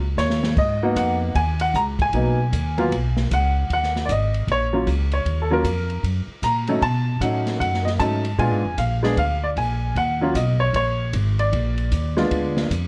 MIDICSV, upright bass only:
0, 0, Header, 1, 3, 480
1, 0, Start_track
1, 0, Key_signature, -6, "minor"
1, 0, Tempo, 391389
1, 699, Time_signature, 4, 2, 24, 8
1, 15790, End_track
2, 0, Start_track
2, 0, Title_t, "Upright bass"
2, 0, Program_c, 0, 32
2, 0, Note_on_c, 0, 37, 65
2, 203, Note_off_c, 0, 37, 0
2, 210, Note_on_c, 0, 39, 73
2, 680, Note_off_c, 0, 39, 0
2, 699, Note_on_c, 0, 44, 72
2, 1165, Note_off_c, 0, 44, 0
2, 1174, Note_on_c, 0, 41, 76
2, 1642, Note_off_c, 0, 41, 0
2, 1657, Note_on_c, 0, 39, 75
2, 2124, Note_off_c, 0, 39, 0
2, 2136, Note_on_c, 0, 37, 82
2, 2603, Note_off_c, 0, 37, 0
2, 2615, Note_on_c, 0, 35, 72
2, 3081, Note_off_c, 0, 35, 0
2, 3096, Note_on_c, 0, 39, 77
2, 3561, Note_off_c, 0, 39, 0
2, 3575, Note_on_c, 0, 35, 70
2, 4040, Note_off_c, 0, 35, 0
2, 4063, Note_on_c, 0, 37, 83
2, 4524, Note_off_c, 0, 37, 0
2, 4533, Note_on_c, 0, 39, 72
2, 4998, Note_off_c, 0, 39, 0
2, 5015, Note_on_c, 0, 32, 81
2, 5475, Note_off_c, 0, 32, 0
2, 5482, Note_on_c, 0, 34, 69
2, 5951, Note_off_c, 0, 34, 0
2, 5964, Note_on_c, 0, 37, 82
2, 6431, Note_off_c, 0, 37, 0
2, 6439, Note_on_c, 0, 39, 75
2, 6908, Note_off_c, 0, 39, 0
2, 6917, Note_on_c, 0, 41, 75
2, 7387, Note_off_c, 0, 41, 0
2, 7398, Note_on_c, 0, 42, 71
2, 7685, Note_off_c, 0, 42, 0
2, 7878, Note_on_c, 0, 46, 78
2, 8346, Note_off_c, 0, 46, 0
2, 8362, Note_on_c, 0, 47, 66
2, 8828, Note_off_c, 0, 47, 0
2, 8834, Note_on_c, 0, 45, 70
2, 9304, Note_off_c, 0, 45, 0
2, 9320, Note_on_c, 0, 42, 72
2, 9787, Note_off_c, 0, 42, 0
2, 9803, Note_on_c, 0, 44, 79
2, 10268, Note_off_c, 0, 44, 0
2, 10283, Note_on_c, 0, 46, 72
2, 10441, Note_off_c, 0, 46, 0
2, 10441, Note_on_c, 0, 44, 44
2, 10599, Note_off_c, 0, 44, 0
2, 10606, Note_on_c, 0, 41, 59
2, 10754, Note_off_c, 0, 41, 0
2, 10763, Note_on_c, 0, 34, 76
2, 11229, Note_off_c, 0, 34, 0
2, 11242, Note_on_c, 0, 38, 69
2, 11709, Note_off_c, 0, 38, 0
2, 11726, Note_on_c, 0, 34, 80
2, 12192, Note_off_c, 0, 34, 0
2, 12212, Note_on_c, 0, 39, 76
2, 12676, Note_off_c, 0, 39, 0
2, 12687, Note_on_c, 0, 35, 80
2, 13154, Note_off_c, 0, 35, 0
2, 13164, Note_on_c, 0, 34, 68
2, 13634, Note_off_c, 0, 34, 0
2, 13653, Note_on_c, 0, 32, 82
2, 14120, Note_off_c, 0, 32, 0
2, 14135, Note_on_c, 0, 34, 76
2, 14602, Note_off_c, 0, 34, 0
2, 14615, Note_on_c, 0, 39, 78
2, 15083, Note_off_c, 0, 39, 0
2, 15097, Note_on_c, 0, 38, 79
2, 15565, Note_off_c, 0, 38, 0
2, 15577, Note_on_c, 0, 41, 77
2, 15790, Note_off_c, 0, 41, 0
2, 15790, End_track
3, 0, Start_track
3, 0, Title_t, "Muted upright bass strokes"
3, 7693, Note_on_c, 9, 29, 36
3, 7816, Note_off_c, 9, 29, 0
3, 15790, End_track
0, 0, End_of_file